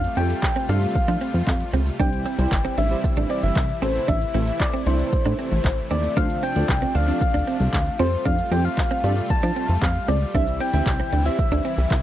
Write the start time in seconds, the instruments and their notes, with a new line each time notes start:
Already playing: supersaw synth C3 G3 A3 F4, soft synth lead F5, downlifter
0.04 closed hi-hat, shaker
0.17 analog synth bass F2, synth pluck A3 C4 F4 G4 A4, clean electric guitar C4, soft synth lead G5, open hi-hat, shaker
0.30 muted clean electric guitar stroke, closed hi-hat, shaker
0.43 muted clean electric guitar stroke, kick, clap, shaker
0.56 clean electric guitar C4, closed hi-hat, shaker
0.69 analog synth bass G2, synth pluck A3 C4 F4 G4 A4, clean electric guitar D4, soft synth lead F5, open hi-hat, shaker
0.82 closed hi-hat, shaker
0.95 analog synth bass F3, soft synth lead F5, muted clean electric guitar stroke, kick, shaker
1.08 analog synth bass F3, clean electric guitar D4, closed hi-hat, shaker
1.21 clean electric guitar C4, open hi-hat, shaker
1.34 analog synth bass F2, closed hi-hat, shaker
1.47 analog synth bass F2, kick, clap, shaker
1.61 closed hi-hat, shaker
1.73 analog synth bass C#2, clean electric guitar C4, open hi-hat, shaker
1.87 closed hi-hat, shaker
1.99 analog synth bass C2, supersaw synth E3 G3 E4, synth pluck G3 C4 E4 G4 C5, clean electric guitar D4, soft synth lead G5, kick, shaker
2.13 closed hi-hat, shaker
2.26 clean electric guitar C4, open hi-hat, shaker
2.38 analog synth bass C2, synth pluck G3 C4 E4 G4 C5, muted clean electric guitar stroke, closed hi-hat, shaker
2.52 analog synth bass G1, muted clean electric guitar stroke, kick, clap, shaker
2.65 clean electric guitar C4, closed hi-hat, shaker
2.78 analog synth bass A1, clean electric guitar D4, soft synth lead E5, open hi-hat, shaker
2.91 synth pluck G3 C4 E4 G4 C5, closed hi-hat, shaker
3.04 muted clean electric guitar stroke, kick, shaker
3.17 analog synth bass A1, clean electric guitar D4, closed hi-hat, shaker
3.30 clean electric guitar C4, soft synth lead D5, open hi-hat, shaker
3.43 analog synth bass G1, soft synth lead E5, closed hi-hat, shaker
3.56 analog synth bass C2, kick, clap, shaker
3.69 closed hi-hat, shaker
3.82 analog synth bass A1, synth pluck A3 C4 E4 A4 C5, supersaw synth A3, clean electric guitar C4, soft synth lead C5, open hi-hat, shaker
3.95 closed hi-hat, shaker
4.08 analog synth bass A1, clean electric guitar D4, soft synth lead E5, kick, shaker
4.21 closed hi-hat, shaker
4.34 analog synth bass A1, synth pluck A3 C4 E4 A4 C5, clean electric guitar C4, open hi-hat, shaker
4.47 muted clean electric guitar stroke, closed hi-hat, shaker
4.60 soft synth lead D5, muted clean electric guitar stroke, kick, clap, shaker
4.73 clean electric guitar C4, closed hi-hat, shaker
4.86 analog synth bass C2, synth pluck A3 C4 E4 A4 D5, clean electric guitar D4, soft synth lead C5, open hi-hat, shaker
4.99 closed hi-hat, shaker
5.12 analog synth bass A2, muted clean electric guitar stroke, kick, shaker
5.25 analog synth bass A2, clean electric guitar D4, closed hi-hat, shaker
5.39 clean electric guitar C4, open hi-hat, shaker
5.52 analog synth bass A1, closed hi-hat, shaker
5.64 analog synth bass A1, kick, clap, shaker
5.78 closed hi-hat, shaker
5.91 analog synth bass D#2, clean electric guitar C4, soft synth lead D5, open hi-hat, shaker
6.04 closed hi-hat, shaker
6.17 analog synth bass D2, supersaw synth F3 D4, synth pluck C4 D4 F4 A4 C5, clean electric guitar D4, soft synth lead F5, kick, shaker
6.30 closed hi-hat, shaker
6.43 clean electric guitar C4, soft synth lead G5, open hi-hat, shaker
6.56 analog synth bass D2, synth pluck C4 D4 F4 A4 D5, muted clean electric guitar stroke, closed hi-hat, shaker
6.69 analog synth bass C2, muted clean electric guitar stroke, kick, clap, shaker
6.82 clean electric guitar C4, closed hi-hat, shaker
6.95 analog synth bass D2, clean electric guitar D4, soft synth lead F5, open hi-hat, shaker
7.08 synth pluck C4 D4 F4 A4 D5, closed hi-hat, shaker
7.21 soft synth lead F5, muted clean electric guitar stroke, kick, shaker
7.34 analog synth bass D2, clean electric guitar D4, closed hi-hat, shaker
7.47 clean electric guitar C4, open hi-hat, shaker
7.60 analog synth bass C2, closed hi-hat, shaker
7.73 analog synth bass D2, kick, clap, shaker
7.86 closed hi-hat, shaker
7.99 analog synth bass F2, supersaw synth G3 A3 F4, synth pluck C4 F4 G4 A4 C5, clean electric guitar C4, soft synth lead C5, open hi-hat, shaker
8.12 closed hi-hat, shaker
8.25 analog synth bass F2, clean electric guitar D4, soft synth lead F5, kick, shaker
8.39 closed hi-hat, shaker
8.51 analog synth bass F2, synth pluck C4 F4 G4 A4 C5, clean electric guitar C4, soft synth lead G5, open hi-hat, shaker
8.65 soft synth lead F5, muted clean electric guitar stroke, closed hi-hat, shaker
8.78 muted clean electric guitar stroke, kick, clap, shaker
8.91 clean electric guitar C4, closed hi-hat, shaker
9.04 analog synth bass G2, synth pluck C4 F4 G4 A4 D5, clean electric guitar D4, open hi-hat, shaker
9.17 closed hi-hat, shaker
9.30 analog synth bass F3, soft synth lead A5, muted clean electric guitar stroke, kick, shaker
9.43 analog synth bass F3, clean electric guitar D4, closed hi-hat, shaker
9.56 clean electric guitar C4, open hi-hat, shaker
9.69 analog synth bass F2, closed hi-hat, shaker
9.82 analog synth bass F2, soft synth lead F5, kick, clap, shaker
9.95 closed hi-hat, shaker
10.08 analog synth bass C#2, clean electric guitar C4, soft synth lead D5, open hi-hat, shaker
10.21 closed hi-hat, shaker
10.34 analog synth bass C2, supersaw synth C3 E3 E4, synth pluck C4 E4 G4 C5 E5, clean electric guitar D4, soft synth lead E5, kick, shaker
10.48 closed hi-hat, shaker
10.61 clean electric guitar C4, soft synth lead G5, open hi-hat, shaker
10.73 analog synth bass D2, synth pluck C4 E4 G4 C5 E5, soft synth lead G5, muted clean electric guitar stroke, closed hi-hat, shaker
10.86 analog synth bass C2, muted clean electric guitar stroke, kick, clap, shaker
10.99 clean electric guitar C4, closed hi-hat, shaker
11.12 analog synth bass D2, clean electric guitar D4, open hi-hat, shaker
11.25 synth pluck C4 E4 G4 C5 E5, soft synth lead E5, closed hi-hat, shaker
11.39 soft synth lead E5, muted clean electric guitar stroke, kick, shaker
11.52 analog synth bass D2, clean electric guitar D4, closed hi-hat, shaker
11.65 clean electric guitar C4, open hi-hat, shaker
11.78 analog synth bass C2, closed hi-hat, shaker
11.91 analog synth bass C2, kick, clap, shaker